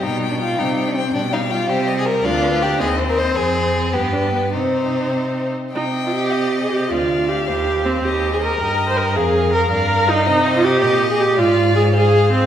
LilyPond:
<<
  \new Staff \with { instrumentName = "Violin" } { \time 6/8 \key c \minor \tempo 4. = 107 g''8 g''8 g''8 g''8 g''8 g''8 | g''8 f''8 g''8 c''8 ees''8 c''8 | d''8 b'8 d''8 ees''8 c''8 ees''8 | c''4. b'4. |
c''2~ c''8 r8 | g''4. ees''4. | f''2. | ees''4. ees''4. |
f''4. f''4. | ees''4. ees''4. | f''4. f''4. | }
  \new Staff \with { instrumentName = "Violin" } { \time 6/8 \key c \minor ees'8. d'16 f'8 ees'8. d'16 c'8 | d'8 ees'8 f'8 g'8. aes'16 bes'8 | f'4 g'8 aes'8. bes'16 c''8 | aes'4. g'4. |
ees'2~ ees'8 r8 | ees''2. | d''4. c''4.~ | c''4. g'4. |
bes'4. d''4. | c''4. ees''4. | d''4. c''4. | }
  \new Staff \with { instrumentName = "Viola" } { \time 6/8 \key c \minor g4. g4. | g2. | d'4. c'4.~ | c'4. b8 d'8 b8 |
c'2~ c'16 r8. | ees'8. f'16 g'4~ g'16 aes'16 g'8 | f'4 g'8 g'4 c'8 | g'8. aes'16 bes'4~ bes'16 c''16 bes'8 |
aes'4 bes'8 bes'4 ees'8 | ees'8. f'16 g'4~ g'16 aes'16 g'8 | f'4 aes'8 aes'4 c'8 | }
  \new Staff \with { instrumentName = "Cello" } { \clef bass \time 6/8 \key c \minor b,4. c4. | b,4. c4. | d,4. ees,4. | f,4. g,4. |
c2~ c8 r8 | c2. | d,4. ees,4. | ees,4. g,4. |
f,4. g,4. | c4. bes,4. | aes,2. | }
>>